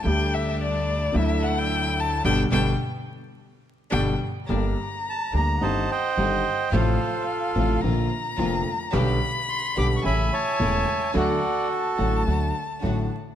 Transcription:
<<
  \new Staff \with { instrumentName = "Violin" } { \time 4/4 \key g \major \tempo 4 = 108 g''8 e''8 d''4 e''8 fis''16 g''8. a''8 | g''8 g''8 r2 g''8 r8 | \key d \phrygian bes''2 fis''2 | f''2 bes''2 |
b''2 aes''2 | fis''4 a''2~ a''8 r8 | }
  \new Staff \with { instrumentName = "Bandoneon" } { \time 4/4 \key g \major << { r1 | r1 | \key d \phrygian r4 a''8 bes''8 a''8 g''4. | c''4 r2. |
r4 c'''8 d'''16. cis'''32 b''8 a''4. | d''4 r2. | } \\ { r1 | r1 | r2 <c'' ees''>8 <c'' ees''>4. | <f' a'>2 r2 |
r2 e''8 <cis'' e''>4. | <fis' a'>2 r2 | } >> }
  \new Staff \with { instrumentName = "String section" } { \time 4/4 \key g \major <g a d'>2 <fis d' e'>2 | <g b d'>8 <g b d'>8 r2 <g b d'>8 r8 | \key d \phrygian <g bes d'>8 r4 <g bes d'>8 <g c' ees'>8 r8 <g c' ees'>8 r8 | <a c' f'>8 r4 <a c' f'>8 <bes d' f'>8 r8 <bes d' f'>8 r8 |
<b d' g'>8 r4 <b d' g'>8 <a cis' e'>8 r8 <a cis' e'>8 r8 | <a d' fis'>8 r4 <a d' fis'>8 <a d' fis'>8 r8 <a d' fis'>8 r8 | }
  \new Staff \with { instrumentName = "Grand piano" } { \clef bass \time 4/4 \key g \major <d, d g a g'>2 <d, d fis a e'>2 | <b, d g>8 <b, d g>8 r2 <b, d g>8 r8 | \key d \phrygian <g,, g, d g bes g'>8 r4 <d, d g bes g'>8 <g,, g, ees g c' g'>8 r8 <g,, g, ees g c' g'>8 r8 | <a,, a, c f a f'>8 r4 <a,, a, c f a f'>8 <bes,, bes, d f bes f'>8 r8 <f,, f, d f bes f'>8 r8 |
<b,, b, d g b g'>8 r4 <b,, b, d g b g'>8 <a,, a, cis e a e'>8 r8 <e,, e, cis e a e'>8 r8 | <d, d fis a fis'>8 r4 <a,, a, d fis a fis'>8 <d, d fis a fis'>8 r8 <a,, a, d fis a fis'>8 r8 | }
  \new Staff \with { instrumentName = "Upright bass" } { \clef bass \time 4/4 \key g \major d,2 d,2 | g,,8 g,,8 r2 g,,8 r8 | \key d \phrygian g,,8 r4 d,8 g,,8 r8 g,,8 r8 | a,,8 r4 a,,8 bes,,8 r8 f,,8 r8 |
b,,8 r4 b,,8 a,,8 r8 e,,8 r8 | d,8 r4 a,,8 d,8 r8 a,,8 r8 | }
>>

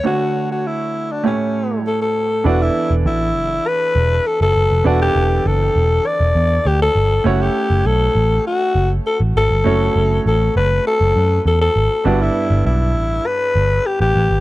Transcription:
<<
  \new Staff \with { instrumentName = "Alto saxophone" } { \time 4/4 \key e \dorian \tempo 4 = 100 fis'8. fis'16 e'8. d'16 cis'4 a'16 a'8. | fis'16 e'8. e'4 b'4 a'16 a'8. | fis'16 g'8. a'4 d''4 g'16 a'8. | fis'16 g'8. a'4 fis'4 a'16 r16 a'8~ |
a'4 a'8 b'8 a'4 a'16 a'8. | fis'16 e'8. e'4 b'4 g'16 g'8. | }
  \new Staff \with { instrumentName = "Grand piano" } { \time 4/4 \key e \dorian <a d' fis' cis''>2 <a e' g' cis''>2 | <b d' e' a' d''>1 | <b d' e' a' d''>1 | <a cis' e' cis'' fis''>1 |
<a cis' e' fis' cis''>1 | <b d' e' g' d''>1 | }
  \new Staff \with { instrumentName = "Grand piano" } { \clef bass \time 4/4 \key e \dorian d4. r8 a,4. r8 | e4. r2 r8 | e4. r2 r8 | r1 |
r1 | g,4. r2 r8 | }
  \new Staff \with { instrumentName = "Picked electric bass" } { \clef bass \time 4/4 \key e \dorian r1 | e,,8 r16 e,,16 a,,8 fis,,8 r8 e,,8 r16 fis,,16 fis,,16 eis,,16 | e,,8 e,,8 fis,,8 e,,8 r16 e,,16 e,8 d,8 g,,8 | fis,,8 r16 fis,,16 b,,8 a,,8 r8 fis,,8 r16 a,,16 gis,,16 g,,16 |
fis,,8 fis,,8 a,,8 fis,,8 r16 fis,,16 fis,8 e,8 gis,,16 r16 | g,,8 r16 g,,16 b,,8 a,,8 r8 g,,8 r16 a,,16 a,,16 gis,,16 | }
>>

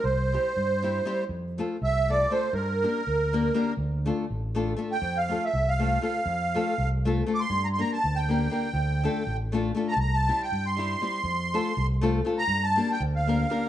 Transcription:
<<
  \new Staff \with { instrumentName = "Accordion" } { \time 5/8 \key f \major \tempo 4 = 121 c''2~ c''8 | r4 e''8 d''8 c''8 | bes'2~ bes'8 | r2 r16 g''16~ |
g''16 f''8 e''8 f''4~ f''16~ | f''4~ f''16 r8. r32 d'''32 c'''16~ | c'''16 bes''32 c'''32 bes''16 a''8 g''4~ g''16~ | g''4~ g''16 r4 bes''32 a''32 |
bes''16 a''8 g''8 c'''4~ c'''16~ | c'''4~ c'''16 r4 bes''16~ | bes''16 a''8 g''8 f''4~ f''16 | }
  \new Staff \with { instrumentName = "Nylon-string guitar" } { \time 5/8 \key f \major r8 <g c' e' g'>8 r8 <g c' e' g'>8 <g c' e' g'>8 | r8 <a c' f' a'>8 r8 <a c' f' a'>8 <a c' f' a'>8 | r8 <bes d' g' bes'>8 r8 <bes d' g' bes'>8 <bes d' g' bes'>8 | r8 <a d' f' a'>8 r8 <a d' f' a'>8 <a d' f' a'>8 |
r8 <a c' f' a'>8 r8 <a c' f' a'>8 <a c' f' a'>8 | r8 <a c' f' a'>8 r8 <a c' f' a'>8 <a c' f' a'>8 | r8 <bes d' g' bes'>8 r8 <bes d' g' bes'>8 <bes d' g' bes'>8 | r8 <a d' f' a'>8 r8 <a d' f' a'>8 <a d' f' a'>8 |
r8 <g c' e' g'>8 r8 <g c' e' g'>8 <g c' e' g'>8 | r8 <a c' f' a'>8 r8 <a c' f' a'>8 <a c' f' a'>8 | r8 <bes d' g' bes'>8 r8 <bes d' g' bes'>8 <bes d' g' bes'>8 | }
  \new Staff \with { instrumentName = "Fingered electric bass" } { \clef bass \time 5/8 \key f \major c,4 g,4. | f,4 c,4. | g,4 d,4. | d,4 a,,4. |
f,4 c,4. | f,4 c,4. | g,4 d,4. | d,4 a,,4. |
c,4 g,4. | f,4 c,4. | g,4 d,4. | }
>>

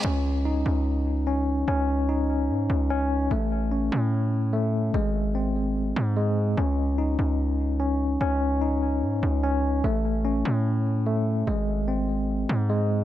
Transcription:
<<
  \new Staff \with { instrumentName = "Tine electric piano" } { \time 4/4 \key a \lydian \tempo 4 = 147 cis'4 dis'2 cis'4 | cis'4 dis'2 cis'4 | a4 cis'2 a4 | gis4 bis2 gis4 |
cis'4 dis'2 cis'4 | cis'4 dis'2 cis'4 | a4 cis'2 a4 | gis4 bis2 gis4 | }
  \new Staff \with { instrumentName = "808-style bass" } { \clef bass \time 4/4 \key a \lydian cis,4. cis,2~ cis,8 | cis,2 gis,8 cis,4. | a,,4. a,2~ a,8 | gis,,2~ gis,,8 gis,4. |
cis,4. cis,2~ cis,8 | cis,2 gis,8 cis,4. | a,,4. a,2~ a,8 | gis,,2~ gis,,8 gis,4. | }
>>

